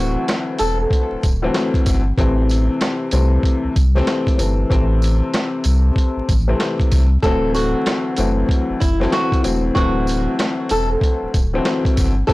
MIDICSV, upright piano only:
0, 0, Header, 1, 2, 480
1, 0, Start_track
1, 0, Tempo, 631579
1, 1656, Time_signature, 4, 2, 24, 8
1, 9373, End_track
2, 0, Start_track
2, 0, Title_t, "Upright piano"
2, 0, Program_c, 0, 0
2, 0, Note_on_c, 0, 38, 94
2, 0, Note_on_c, 0, 52, 90
2, 0, Note_on_c, 0, 54, 87
2, 0, Note_on_c, 0, 57, 82
2, 0, Note_on_c, 0, 60, 102
2, 949, Note_off_c, 0, 38, 0
2, 951, Note_off_c, 0, 52, 0
2, 953, Note_off_c, 0, 54, 0
2, 954, Note_off_c, 0, 57, 0
2, 955, Note_off_c, 0, 60, 0
2, 1081, Note_on_c, 0, 38, 96
2, 1086, Note_on_c, 0, 52, 88
2, 1087, Note_on_c, 0, 54, 87
2, 1090, Note_on_c, 0, 57, 81
2, 1095, Note_on_c, 0, 60, 105
2, 1515, Note_off_c, 0, 38, 0
2, 1517, Note_off_c, 0, 52, 0
2, 1518, Note_off_c, 0, 54, 0
2, 1520, Note_off_c, 0, 57, 0
2, 1522, Note_off_c, 0, 60, 0
2, 1654, Note_on_c, 0, 48, 94
2, 1659, Note_on_c, 0, 52, 88
2, 1663, Note_on_c, 0, 57, 87
2, 1668, Note_on_c, 0, 60, 106
2, 2331, Note_off_c, 0, 48, 0
2, 2334, Note_off_c, 0, 52, 0
2, 2336, Note_off_c, 0, 57, 0
2, 2338, Note_off_c, 0, 60, 0
2, 2374, Note_on_c, 0, 48, 96
2, 2377, Note_on_c, 0, 52, 85
2, 2383, Note_on_c, 0, 57, 82
2, 2386, Note_on_c, 0, 60, 96
2, 2826, Note_off_c, 0, 48, 0
2, 2828, Note_off_c, 0, 52, 0
2, 2830, Note_off_c, 0, 57, 0
2, 2832, Note_off_c, 0, 60, 0
2, 3004, Note_on_c, 0, 48, 87
2, 3010, Note_on_c, 0, 52, 80
2, 3014, Note_on_c, 0, 57, 85
2, 3017, Note_on_c, 0, 60, 113
2, 3314, Note_off_c, 0, 48, 0
2, 3316, Note_off_c, 0, 52, 0
2, 3318, Note_off_c, 0, 57, 0
2, 3320, Note_off_c, 0, 60, 0
2, 3328, Note_on_c, 0, 48, 73
2, 3332, Note_on_c, 0, 52, 66
2, 3337, Note_on_c, 0, 57, 64
2, 3340, Note_on_c, 0, 60, 82
2, 3557, Note_off_c, 0, 48, 0
2, 3560, Note_off_c, 0, 52, 0
2, 3562, Note_off_c, 0, 57, 0
2, 3564, Note_off_c, 0, 60, 0
2, 3568, Note_on_c, 0, 48, 93
2, 3573, Note_on_c, 0, 52, 81
2, 3577, Note_on_c, 0, 57, 85
2, 3581, Note_on_c, 0, 60, 105
2, 4790, Note_off_c, 0, 48, 0
2, 4792, Note_off_c, 0, 52, 0
2, 4794, Note_off_c, 0, 57, 0
2, 4796, Note_off_c, 0, 60, 0
2, 4921, Note_on_c, 0, 48, 90
2, 4925, Note_on_c, 0, 52, 82
2, 4929, Note_on_c, 0, 57, 81
2, 4934, Note_on_c, 0, 60, 99
2, 5355, Note_off_c, 0, 48, 0
2, 5357, Note_off_c, 0, 52, 0
2, 5360, Note_off_c, 0, 57, 0
2, 5362, Note_off_c, 0, 60, 0
2, 5502, Note_on_c, 0, 38, 96
2, 5505, Note_on_c, 0, 52, 86
2, 5508, Note_on_c, 0, 54, 87
2, 5512, Note_on_c, 0, 57, 85
2, 5515, Note_on_c, 0, 60, 111
2, 6175, Note_off_c, 0, 38, 0
2, 6177, Note_off_c, 0, 52, 0
2, 6178, Note_off_c, 0, 54, 0
2, 6180, Note_off_c, 0, 57, 0
2, 6182, Note_off_c, 0, 60, 0
2, 6211, Note_on_c, 0, 38, 92
2, 6214, Note_on_c, 0, 52, 85
2, 6217, Note_on_c, 0, 54, 85
2, 6221, Note_on_c, 0, 57, 87
2, 6224, Note_on_c, 0, 60, 98
2, 6664, Note_off_c, 0, 38, 0
2, 6666, Note_off_c, 0, 52, 0
2, 6667, Note_off_c, 0, 54, 0
2, 6669, Note_off_c, 0, 57, 0
2, 6671, Note_off_c, 0, 60, 0
2, 6837, Note_on_c, 0, 38, 87
2, 6840, Note_on_c, 0, 52, 83
2, 6844, Note_on_c, 0, 54, 81
2, 6846, Note_on_c, 0, 57, 90
2, 6850, Note_on_c, 0, 60, 102
2, 7150, Note_off_c, 0, 38, 0
2, 7152, Note_off_c, 0, 52, 0
2, 7154, Note_off_c, 0, 54, 0
2, 7155, Note_off_c, 0, 57, 0
2, 7157, Note_off_c, 0, 60, 0
2, 7165, Note_on_c, 0, 38, 82
2, 7170, Note_on_c, 0, 52, 68
2, 7172, Note_on_c, 0, 54, 73
2, 7176, Note_on_c, 0, 57, 70
2, 7179, Note_on_c, 0, 60, 90
2, 7396, Note_off_c, 0, 38, 0
2, 7398, Note_off_c, 0, 52, 0
2, 7400, Note_off_c, 0, 54, 0
2, 7401, Note_off_c, 0, 57, 0
2, 7403, Note_off_c, 0, 60, 0
2, 7412, Note_on_c, 0, 38, 96
2, 7416, Note_on_c, 0, 52, 90
2, 7419, Note_on_c, 0, 54, 86
2, 7422, Note_on_c, 0, 57, 85
2, 7425, Note_on_c, 0, 60, 104
2, 8632, Note_off_c, 0, 38, 0
2, 8634, Note_off_c, 0, 52, 0
2, 8636, Note_off_c, 0, 54, 0
2, 8637, Note_off_c, 0, 57, 0
2, 8638, Note_off_c, 0, 60, 0
2, 8767, Note_on_c, 0, 38, 90
2, 8769, Note_on_c, 0, 52, 87
2, 8773, Note_on_c, 0, 54, 84
2, 8775, Note_on_c, 0, 57, 84
2, 8779, Note_on_c, 0, 60, 108
2, 9198, Note_off_c, 0, 38, 0
2, 9199, Note_off_c, 0, 52, 0
2, 9201, Note_off_c, 0, 54, 0
2, 9202, Note_off_c, 0, 57, 0
2, 9204, Note_off_c, 0, 60, 0
2, 9326, Note_on_c, 0, 48, 99
2, 9331, Note_on_c, 0, 52, 93
2, 9336, Note_on_c, 0, 57, 82
2, 9340, Note_on_c, 0, 60, 108
2, 9373, Note_off_c, 0, 48, 0
2, 9373, Note_off_c, 0, 52, 0
2, 9373, Note_off_c, 0, 57, 0
2, 9373, Note_off_c, 0, 60, 0
2, 9373, End_track
0, 0, End_of_file